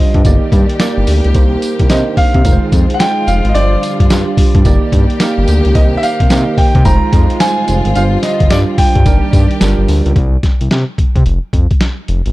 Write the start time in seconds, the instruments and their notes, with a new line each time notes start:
Already playing: string section D3 F3 G3 C4 F4, tine electric piano G3 D4 F4 C5, grand piano D#5
0.14 analog synth bass G2, kick, closed hi-hat
0.25 analog synth bass G1, string section D#3 A#3 G4 D5, tine electric piano A#3 D#4 G4 D5, kick, closed hi-hat, tambourine
0.52 analog synth bass G2, kick, closed hi-hat, tambourine
0.69 closed hi-hat
0.80 tine electric piano A#3 D#4 G4 D5, snare, closed hi-hat, tambourine
0.98 analog synth bass G1
1.07 analog synth bass D2, open hi-hat, tambourine
1.24 analog synth bass C#2, closed hi-hat
1.34 analog synth bass C2, string section D#3 C4, tine electric piano A#3 D#4 G4 C5, kick, closed hi-hat, tambourine
1.62 closed hi-hat, tambourine
1.79 analog synth bass C2, kick, closed hi-hat
1.90 analog synth bass C3, tine electric piano A#3 D4 G4 C5, grand piano D#5, snare, closed hi-hat, tambourine
1.96 tine electric piano D#4
2.17 analog synth bass C3, grand piano F5, kick, open hi-hat
2.34 analog synth bass C3, kick, closed hi-hat
2.45 analog synth bass F1, string section F3 G#3 F4, tine electric piano G#3 D#4 F4 A#4, kick, closed hi-hat, tambourine
2.53 tine electric piano C5
2.72 analog synth bass F2, kick, closed hi-hat, tambourine
2.90 closed hi-hat
2.94 grand piano F#5
2.99 tine electric piano G#3 D#4 F4 C5, grand piano G5, snare, closed hi-hat, tambourine
3.27 analog synth bass F1, grand piano F5, closed hi-hat, tambourine
3.45 analog synth bass G#1, closed hi-hat
3.49 grand piano D#5
3.54 analog synth bass G1, string section D3 G3, tine electric piano G3 D4 F4 C5, grand piano D5, closed hi-hat, tambourine
3.83 closed hi-hat, tambourine
4.00 analog synth bass G1, kick, closed hi-hat
4.10 analog synth bass G2, tine electric piano G3 D4 F4 G4, snare, closed hi-hat, tambourine
4.37 analog synth bass G2, kick, open hi-hat
4.55 analog synth bass G2, kick, closed hi-hat
4.65 analog synth bass G1, string section D#3 A#3 G4 D5, tine electric piano A#3 D#4 G4 D5, kick, closed hi-hat, tambourine
4.92 analog synth bass G2, kick, closed hi-hat, tambourine
5.10 closed hi-hat
5.20 tine electric piano A#3 D#4 G4 F5, snare, closed hi-hat, tambourine
5.38 analog synth bass G1
5.47 analog synth bass D2, closed hi-hat, tambourine
5.65 analog synth bass C#2, closed hi-hat
5.75 analog synth bass C2, tine electric piano A#3 D#4 G4 C5, string section C4, grand piano D#5, kick, closed hi-hat, tambourine
5.97 grand piano E5
6.03 grand piano F5, closed hi-hat, tambourine
6.20 analog synth bass C2, kick, closed hi-hat
6.30 analog synth bass C3, tine electric piano A#3 D#4 G4 D#5, snare, closed hi-hat, tambourine
6.58 analog synth bass C3, grand piano G5, kick, open hi-hat
6.75 analog synth bass C3, kick, closed hi-hat
6.85 analog synth bass F1, string section F3 G#3 F4, tine electric piano G#3 D#4 F4 C5, grand piano A#5, kick, closed hi-hat, tambourine
7.12 analog synth bass F2, kick, closed hi-hat, tambourine
7.30 closed hi-hat
7.40 tine electric piano G3 D#4 F4 C5, grand piano G#5, snare, closed hi-hat, tambourine
7.47 tine electric piano G#3
7.68 analog synth bass F1, closed hi-hat, tambourine
7.85 analog synth bass G#1, closed hi-hat
7.95 analog synth bass G1, string section D3 F3 G3, tine electric piano G3 D4 F4 C5, grand piano F5, closed hi-hat, tambourine
8.23 grand piano D#5, snare, closed hi-hat, tambourine
8.40 analog synth bass G1, kick, closed hi-hat
8.50 analog synth bass G2, tine electric piano G3 D4 F4 G4, grand piano D5, snare, closed hi-hat, tambourine
8.78 analog synth bass G2, grand piano G5, kick, open hi-hat
8.95 analog synth bass G2, kick, closed hi-hat
9.05 analog synth bass G1, string section D#3 A#3 G4 D5, tine electric piano G3 D4 D#4 A#4, kick, closed hi-hat, tambourine
9.33 analog synth bass G2, kick, closed hi-hat, tambourine
9.51 closed hi-hat
9.60 analog synth bass G1, string section F3 G3 A#3, tine electric piano G3 D4 F4 A#4, snare, closed hi-hat, tambourine
9.78 analog synth bass G1
9.88 analog synth bass D2, open hi-hat, tambourine
10.06 analog synth bass C#2, closed hi-hat
10.16 analog synth bass C2, kick, closed hi-hat
10.43 kick, snare, closed hi-hat
10.61 analog synth bass C2, closed hi-hat
10.71 analog synth bass C3, snare, closed hi-hat
10.98 analog synth bass C3, kick, closed hi-hat
11.16 analog synth bass C3, kick, closed hi-hat
11.26 analog synth bass F1, closed hi-hat
11.53 analog synth bass F2, kick, closed hi-hat
11.71 kick, closed hi-hat
11.81 snare, closed hi-hat
12.08 analog synth bass F1, closed hi-hat
12.26 analog synth bass G#1, closed hi-hat